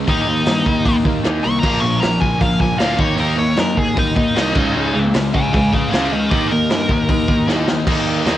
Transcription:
0.08 picked electric bass D#2, overdriven electric guitar D#3 A#3 D#4, lead electric guitar D#4, kick, open hi-hat
0.22 lead electric guitar D#4
0.27 picked electric bass D#2, overdriven electric guitar D#3 A#3 D#4
0.46 picked electric bass G2, overdriven electric guitar D#3 A#3 D#4, snare, open hi-hat
0.66 picked electric bass D#2, overdriven electric guitar D#3 A#3 D#4, kick
0.86 picked electric bass D#2, overdriven electric guitar D#3 A#3 D#4, kick, open hi-hat
1.05 picked electric bass D#2, overdriven electric guitar D#3 A#3 D#4, kick
1.24 picked electric bass D#2, overdriven electric guitar D#3 A#3 D#4, snare, open hi-hat
1.43 picked electric bass C2, overdriven electric guitar D#3 A#3 D#4, lead electric guitar C#6
1.60 overdriven electric guitar A#2 F3, lead electric guitar A#5, kick, crash
1.64 picked electric bass A#1, overdriven electric guitar A#3
1.80 picked electric bass A#1, overdriven electric guitar A#2 F3 A#3, lead electric guitar C#6
2.00 picked electric bass A#1, overdriven electric guitar A#2 F3 A#3, lead electric guitar A#5, snare, open hi-hat
2.20 picked electric bass A#1, overdriven electric guitar A#2 F3 A#3, lead electric guitar G#5, kick
2.40 picked electric bass A#1, overdriven electric guitar A#2 F3 A#3, lead electric guitar F5, kick, open hi-hat
2.60 overdriven electric guitar A#2 F3 A#3, lead electric guitar G#5, kick
2.79 picked electric bass D2, overdriven electric guitar A#2 F3 A#3, lead electric guitar F5, snare, open hi-hat
2.99 picked electric bass D#2, overdriven electric guitar D#3 A#3 D#4, lead electric guitar C#5, kick
3.18 picked electric bass D#2, overdriven electric guitar D#3 A#3 D#4, lead electric guitar A#4, open hi-hat
3.37 picked electric bass D#2, overdriven electric guitar D#3 A#3 D#4, lead electric guitar C#5
3.56 picked electric bass F#2, overdriven electric guitar D#3 A#3 D#4, lead electric guitar A#4, snare, open hi-hat
3.76 picked electric bass D#2, overdriven electric guitar D#3 A#3 D#4, lead electric guitar G#4, kick
3.96 picked electric bass D#2, overdriven electric guitar D#3 A#3 D#4, lead electric guitar D#4, kick, open hi-hat
4.16 picked electric bass D#2, overdriven electric guitar D#3 A#3 D#4, kick
4.35 picked electric bass C2, overdriven electric guitar D#3 A#3 D#4, snare, open hi-hat
4.55 picked electric bass C#2, overdriven electric guitar C#3 G#3 C#4, kick, crash
4.74 picked electric bass C#2, overdriven electric guitar C#3 G#3 C#4
4.94 picked electric bass C#2, overdriven electric guitar C#3 G#3 C#4
5.14 picked electric bass C#2, overdriven electric guitar C#3 G#3 C#4, snare, open hi-hat
5.33 picked electric bass C#2, overdriven electric guitar C#3 G#3 C#4, lead electric guitar F5 G#5, kick
5.53 picked electric bass C#2, overdriven electric guitar C#3 G#3 C#4, lead electric guitar F5 G#5, kick, open hi-hat
5.73 overdriven electric guitar C#3 G#3 C#4, lead electric guitar G#4 F5, kick
5.90 picked electric bass C#2, lead electric guitar G#4 F5, open hi-hat
5.94 overdriven electric guitar C#3 G#3 C#4, snare
6.12 picked electric bass C#2, overdriven electric guitar C#3 G#3 C#4, lead electric guitar A#4 D#5
6.30 picked electric bass D#2, overdriven electric guitar D#3 A#3 D#4, lead electric guitar G4 D#5, kick, open hi-hat
6.48 overdriven electric guitar D#3, lead electric guitar A#4
6.52 picked electric bass D#2, overdriven electric guitar A#3 D#4
6.70 picked electric bass G2, overdriven electric guitar D#3 A#3 D#4, snare, open hi-hat
6.89 picked electric bass D#2, overdriven electric guitar D#3 A#3 D#4, kick
7.08 picked electric bass D#2, overdriven electric guitar D#3 A#3 D#4, kick, open hi-hat
7.28 picked electric bass D#2, overdriven electric guitar D#3 A#3 D#4, kick
7.48 picked electric bass D#2, overdriven electric guitar D#3 A#3 D#4, snare
7.67 picked electric bass D#2, overdriven electric guitar D#3 A#3 D#4, snare
7.87 picked electric bass D#2, overdriven electric guitar D#3 A#3 D#4, kick, crash
8.25 picked electric bass D#2, distorted electric guitar D#3 A#3 D#4, snare, crash

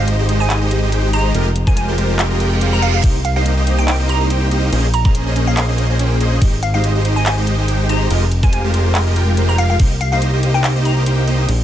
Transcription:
Already playing: analog synth bass G#1
0.00 supersaw synth G#3 D#4 G4 C5 D#5
0.08 closed hi-hat
0.19 supersaw synth G#3 D#4 G4 C5 D#5
0.29 supersaw synth G#3 D#4 G4 C5 D#5, closed hi-hat
0.40 synth pluck G#5
0.50 supersaw synth G#3 D#4 G4 C5 D#5, synth pluck G#5, clap, closed hi-hat
0.61 supersaw synth G#3 D#4 G4 C5 D#5
0.71 closed hi-hat
0.82 supersaw synth G#3 D#4 G4 C5 D#5
0.92 supersaw synth G#3 D#4 G4 C5 G5, closed hi-hat
1.13 supersaw synth G#3 D#4 G4 C5 D#5, synth pluck A#5, closed hi-hat
1.34 analog synth bass F1, supersaw synth G#3 F4 G4 A#4 D#5, closed hi-hat
1.56 closed hi-hat
1.67 supersaw synth G#3 F4 G4 A#4 C5, synth pluck G#5, kick
1.77 synth pluck G#5, closed hi-hat
1.88 supersaw synth G#3 F4 G4 A#4 C5
1.98 supersaw synth G#3 F4 G4 A#4 C5, closed hi-hat
2.19 supersaw synth G#3 F4 G4 A#4 D#5, clap, closed hi-hat, reverse cymbal
2.30 supersaw synth G#3 F4 G4 A#4 D#5
2.40 supersaw synth G#3 F4 G4 A#4 G5, closed hi-hat
2.61 supersaw synth G#3 F4 G4 A#4 C5, closed hi-hat
2.73 synth pluck A#5
2.82 supersaw synth G#3 F4 G4 A#4 F5, synth pluck F5, closed hi-hat
2.94 synth pluck F5
3.03 analog synth bass C2, supersaw synth A#3 D#4 G4 C5 D#5, kick, closed hi-hat, crash
3.25 synth pluck F5, closed hi-hat
3.36 supersaw synth A#3 D#4 G4 C5 D#5, synth pluck F5
3.46 closed hi-hat
3.57 supersaw synth A#3 D#4 G4 C5 D#5
3.67 supersaw synth A#3 D#4 G4 C5 D#5, closed hi-hat
3.78 synth pluck G5
3.88 supersaw synth A#3 D#4 G4 C5 D#5, synth pluck G5, clap, closed hi-hat, crash
3.99 supersaw synth A#3 D#4 G4 C5 D#5
4.09 synth pluck A#5, closed hi-hat
4.21 supersaw synth A#3 D#4 G4 C5 D#5
4.30 supersaw synth A#3 D#4 G4 C5 G5, closed hi-hat
4.51 supersaw synth A#3 D#4 G4 C5 D#5, closed hi-hat
4.72 analog synth bass A#1, supersaw synth A#3 C#4 G#4 C5 D#5, closed hi-hat, crash
4.94 synth pluck A#5, closed hi-hat
5.05 supersaw synth A#3 C#4 G#4 C5 D#5, synth pluck A#5, kick
5.15 closed hi-hat
5.26 supersaw synth A#3 C#4 G#4 C5 D#5
5.36 supersaw synth A#3 C#4 G#4 C5 D#5, closed hi-hat
5.47 synth pluck F5
5.57 supersaw synth A#3 C#4 G#4 C5 D#5, synth pluck F5, clap, closed hi-hat, crash
5.69 supersaw synth A#3 C#4 G#4 C5 D#5
5.78 closed hi-hat
5.90 supersaw synth A#3 C#4 G#4 C5 D#5
5.99 supersaw synth A#3 C#4 G#4 C5 G5, closed hi-hat
6.21 supersaw synth A#3 C#4 G#4 C5 D#5, closed hi-hat
6.42 analog synth bass G#1, supersaw synth G#3 D#4 G4 D#5, kick, closed hi-hat, crash
6.63 synth pluck F5, closed hi-hat
6.74 supersaw synth G#3 D#4 G4 C5 D#5, synth pluck F5
6.84 closed hi-hat
6.95 supersaw synth G#3 D#4 G4 C5 D#5
7.05 supersaw synth G#3 D#4 G4 C5 D#5, closed hi-hat
7.16 synth pluck G#5
7.26 supersaw synth G#3 D#4 G4 C5 D#5, synth pluck G#5, clap, closed hi-hat, crash
7.37 supersaw synth G#3 D#4 G4 C5 D#5
7.47 closed hi-hat
7.59 supersaw synth G#3 D#4 G4 C5 D#5
7.68 supersaw synth G#3 D#4 G4 C5 G5, closed hi-hat
7.89 supersaw synth G#3 D#4 G4 C5 D#5, synth pluck A#5, closed hi-hat
8.10 analog synth bass F1, supersaw synth G#3 F4 G4 A#4 D#5, closed hi-hat, crash
8.32 closed hi-hat
8.43 supersaw synth G#3 F4 G4 A#4 C5, synth pluck G#5, kick
8.53 synth pluck G#5, closed hi-hat
8.64 supersaw synth G#3 F4 G4 A#4 C5
8.74 supersaw synth G#3 F4 G4 A#4 C5, closed hi-hat
8.95 supersaw synth G#3 F4 G4 A#4 D#5, clap, closed hi-hat, crash
9.07 supersaw synth G#3 F4 G4 A#4 D#5
9.16 supersaw synth G#3 F4 G4 A#4 G5, closed hi-hat
9.37 supersaw synth G#3 F4 G4 A#4 C5, closed hi-hat
9.49 synth pluck A#5
9.58 supersaw synth G#3 F4 G4 A#4 F5, synth pluck F5, closed hi-hat
9.70 synth pluck F5
9.80 analog synth bass C2, supersaw synth A#3 D#4 G4 C5, kick, closed hi-hat, crash
10.01 synth pluck F5, closed hi-hat
10.12 supersaw synth A#3 D#4 G4 C5 D#5, synth pluck F5
10.22 closed hi-hat
10.33 supersaw synth A#3 D#4 G4 C5 D#5
10.43 supersaw synth A#3 D#4 G4 C5 D#5, closed hi-hat
10.54 synth pluck G5
10.64 supersaw synth A#3 D#4 G4 C5 D#5, synth pluck G5, clap, closed hi-hat, crash
10.76 supersaw synth A#3 D#4 G4 C5 D#5
10.85 synth pluck A#5, closed hi-hat
10.97 supersaw synth A#3 D#4 G4 C5 D#5
11.06 supersaw synth A#3 D#4 G4 C5 G5, closed hi-hat
11.28 supersaw synth A#3 D#4 G4 C5 D#5, closed hi-hat
11.49 analog synth bass A#1, closed hi-hat, crash

